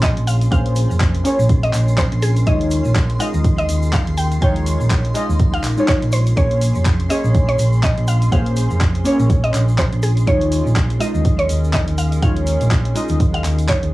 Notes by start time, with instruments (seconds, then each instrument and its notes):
Already playing: fingered electric bass A#1, synth stab A#3 C#4 G#4 C#5, ambient pad C#4 F4 G#4 C6, string machine C6
0.03 synth pluck D#5, kick, clap, closed hi-hat, shaker
0.17 fingered electric bass A#1, closed hi-hat
0.27 synth pluck F5, open hi-hat, shaker
0.41 closed hi-hat, shaker
0.51 fingered electric bass A#1, synth stab A#3 C#4 G#4 C5, ambient pad A#4, synth pluck F5, kick, closed hi-hat, shaker
0.66 closed hi-hat
0.76 open hi-hat, shaker
0.90 fingered electric bass F1, shaker
1.00 kick, clap, closed hi-hat, shaker
1.15 closed hi-hat
1.24 synth stab A#3 C#4 G#4 C#5, open hi-hat, shaker
1.39 fingered electric bass A#1, shaker
1.49 kick, closed hi-hat, shaker
1.63 synth pluck D#5, closed hi-hat
1.73 fingered electric bass A#1, clap, open hi-hat, shaker
1.88 shaker
1.98 synth pluck C5, kick, clap, closed hi-hat, shaker
2.12 fingered electric bass A#1, closed hi-hat
2.22 synth pluck G#4, open hi-hat, shaker
2.36 closed hi-hat, shaker
2.46 synth stab G#3 D#4 F4 C#5, ambient pad G#4, synth pluck D#5, kick, closed hi-hat, shaker
2.61 closed hi-hat
2.71 open hi-hat, shaker
2.85 fingered electric bass A#1, shaker
2.95 kick, clap, closed hi-hat, shaker
3.10 closed hi-hat
3.19 synth stab G#3 D#4 F4 D#5, synth pluck F5, open hi-hat, shaker
3.34 fingered electric bass D#2, shaker
3.44 kick, closed hi-hat, shaker
3.58 synth pluck D#5, closed hi-hat
3.69 fingered electric bass D#2, open hi-hat, shaker
3.82 shaker
3.93 synth pluck F5, kick, clap, closed hi-hat, shaker
4.07 fingered electric bass D#2, closed hi-hat
4.17 synth pluck G5, open hi-hat, shaker
4.31 closed hi-hat, shaker
4.41 fingered electric bass D#2, synth stab G#3 D#4 F4 C#5, synth pluck G5, kick, closed hi-hat, shaker
4.56 closed hi-hat
4.66 open hi-hat, shaker
4.80 fingered electric bass A#1, shaker
4.91 kick, clap, closed hi-hat, shaker
5.05 closed hi-hat
5.14 synth stab G#3 D#4 F4 D#5, open hi-hat, shaker
5.29 fingered electric bass D#2, shaker
5.39 kick, closed hi-hat, shaker
5.54 synth pluck F5, closed hi-hat
5.63 fingered electric bass A#1, clap, open hi-hat, shaker
5.77 synth stab G#3 D#4 F4 C#5, shaker
5.88 synth pluck C#5, kick, clap, closed hi-hat, shaker
6.02 fingered electric bass A#1, closed hi-hat
6.12 synth pluck C5, open hi-hat, shaker
6.26 closed hi-hat, shaker
6.36 synth stab A#3 C#4 G#4 C#5, ambient pad C#4 F4 C6, synth pluck C#5, kick, closed hi-hat, shaker
6.51 closed hi-hat
6.62 open hi-hat, shaker
6.75 fingered electric bass F1, shaker
6.86 kick, clap, closed hi-hat, shaker
7.00 closed hi-hat
7.09 synth stab A#3 C#4 G#4 C#5, synth pluck D#5, open hi-hat, shaker
7.24 fingered electric bass A#1, shaker
7.35 kick, closed hi-hat, shaker
7.49 synth pluck C#5, closed hi-hat
7.59 fingered electric bass A#1, open hi-hat, shaker
7.72 shaker
7.83 synth pluck D#5, kick, clap, closed hi-hat, shaker
7.98 fingered electric bass A#1, closed hi-hat
8.07 synth pluck F5, open hi-hat, shaker
8.22 closed hi-hat, shaker
8.31 fingered electric bass A#1, synth stab A#3 C#4 G#4 C5, synth pluck F5, kick, closed hi-hat, shaker
8.46 closed hi-hat
8.56 open hi-hat, shaker
8.70 fingered electric bass F1, shaker
8.81 kick, clap, closed hi-hat, shaker
8.95 closed hi-hat
9.04 synth stab A#3 C#4 G#4 C#5, open hi-hat, shaker
9.19 fingered electric bass A#1, shaker
9.30 kick, closed hi-hat, shaker
9.44 synth pluck D#5, closed hi-hat
9.54 fingered electric bass A#1, clap, open hi-hat, shaker
9.68 shaker
9.78 synth pluck C5, kick, clap, closed hi-hat, shaker
9.93 fingered electric bass A#1, closed hi-hat
10.03 synth pluck G#4, open hi-hat, shaker
10.17 closed hi-hat, shaker
10.26 fingered electric bass D#2, synth stab G#3 D#4 F4 C#5, ambient pad C#4 A#4, synth pluck C#5, kick, closed hi-hat, shaker
10.41 closed hi-hat
10.52 open hi-hat, shaker
10.66 fingered electric bass A#1, shaker
10.76 kick, clap, closed hi-hat, shaker
10.90 closed hi-hat
10.99 synth stab G#3 D#4 F4 D#5, synth pluck D#5, open hi-hat, shaker
11.15 fingered electric bass D#2, shaker
11.25 kick, closed hi-hat, shaker
11.39 synth pluck C#5, closed hi-hat
11.49 fingered electric bass D#2, open hi-hat, shaker
11.64 shaker
11.73 synth pluck D#5, kick, clap, closed hi-hat, shaker
11.88 fingered electric bass D#2, closed hi-hat
11.98 synth pluck F5, open hi-hat, shaker
12.12 closed hi-hat, shaker
12.21 fingered electric bass D#2, synth stab G#3 D#4 F4 C#5, synth pluck F5, kick, closed hi-hat, shaker
12.36 closed hi-hat
12.47 open hi-hat, shaker
12.61 fingered electric bass A#1, closed hi-hat, shaker
12.71 kick, clap, closed hi-hat, shaker
12.85 closed hi-hat
12.95 synth stab G#3 D#4 F4 D#5, open hi-hat, shaker
13.08 fingered electric bass D#2, closed hi-hat, shaker
13.20 kick, closed hi-hat, shaker
13.34 synth pluck F5, closed hi-hat
13.44 fingered electric bass D#2, clap, open hi-hat, shaker
13.58 closed hi-hat, shaker
13.69 synth pluck C#5, kick, clap, closed hi-hat, shaker
13.83 fingered electric bass D#2, closed hi-hat